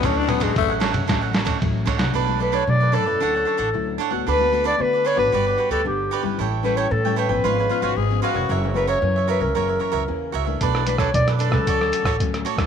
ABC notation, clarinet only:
X:1
M:4/4
L:1/16
Q:1/4=114
K:D
V:1 name="Clarinet"
z16 | [K:Bm] z2 B c d2 A8 z2 | B3 d B2 c B4 A G3 z | z2 B c A2 B8 z2 |
z2 B c3 B ^A6- A z2 | z2 B c d2 A8 z2 |]